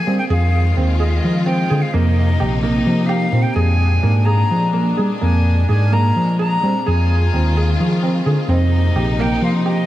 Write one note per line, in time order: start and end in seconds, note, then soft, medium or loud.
0.00 0.30 D3 medium
0.00 0.30 A#3 medium
0.00 0.30 G#4 medium
0.00 0.17 G#5 loud
0.07 0.18 G3 medium
0.07 0.22 C4 medium
0.18 0.24 G5 medium
0.30 0.71 F2 loud
0.30 1.94 D#3 medium
0.30 1.93 G#3 medium
0.30 1.94 F4 medium
0.30 0.61 G#4 medium
0.30 0.74 F5 medium
0.77 1.18 D#2 medium
0.77 0.92 C4 medium
0.99 1.31 G#4 medium
0.99 1.10 D#5 medium
1.09 1.16 F5 medium
1.15 1.45 D#5 medium
1.25 1.65 F3 medium
1.46 1.62 C4 medium
1.46 1.83 G5 loud
1.70 1.81 D3 medium
1.70 1.86 G#4 medium
1.81 1.94 F5 medium
1.93 2.34 F2 loud
1.93 3.55 C3 medium
1.93 2.24 A#3 medium
1.93 3.55 A#3 medium
1.93 3.55 D#4 medium
1.93 2.61 D#5 medium
2.40 2.81 A#1 medium
2.40 2.55 G4 medium
2.61 2.93 A#3 medium
2.61 3.07 D#5 loud
2.87 3.27 F3 medium
3.06 3.24 G4 medium
3.06 3.43 F5 loud
3.32 3.43 A#2 medium
3.32 3.48 C4 medium
3.42 3.55 G5 loud
3.53 3.97 F2 loud
3.53 5.20 A#2 medium
3.53 8.44 G#3 medium
3.53 6.83 D4 medium
3.53 3.87 G#4 medium
3.53 4.26 G#5 loud
4.03 4.44 G#2 medium
4.03 4.19 A#3 medium
4.25 4.57 G#4 medium
4.25 4.97 A#5 loud
4.51 4.92 F3 medium
4.73 4.89 A#3 medium
4.97 5.09 G3 medium
4.97 5.13 G#4 medium
5.22 5.63 F2 loud
5.22 6.85 A#2 medium
5.22 5.52 A#3 medium
5.22 5.66 G#5 loud
5.68 6.10 G#2 medium
5.68 5.84 G#4 medium
5.68 5.94 G#5 loud
5.68 7.06 D6 soft
5.87 7.21 F6 soft
5.92 6.23 A#3 medium
5.92 6.39 A#5 loud
6.16 6.57 F3 medium
6.39 6.55 G#4 medium
6.39 6.89 A#5 loud
6.63 6.74 G3 medium
6.63 6.79 C4 medium
6.86 7.28 F2 loud
6.86 8.48 D#3 medium
6.86 8.48 F4 medium
6.86 7.17 G#4 medium
6.86 7.80 G#5 loud
7.34 7.74 D#2 medium
7.34 7.49 C4 medium
7.57 7.87 G#4 medium
7.81 8.20 F3 medium
8.03 8.18 C4 medium
8.26 8.36 D3 medium
8.26 8.41 G#4 medium
8.49 8.89 F2 loud
8.49 9.86 C3 medium
8.49 9.86 A#3 medium
8.49 8.79 C4 medium
8.49 9.86 D#4 medium
8.49 9.22 D#5 loud
8.95 9.36 A#1 loud
8.95 9.11 G4 medium
9.20 9.50 A#3 medium
9.20 9.43 G5 loud
9.42 9.83 F3 medium
9.42 9.49 F5 medium
9.42 9.86 C6 medium
9.66 9.81 G4 medium
9.66 9.86 D#5 loud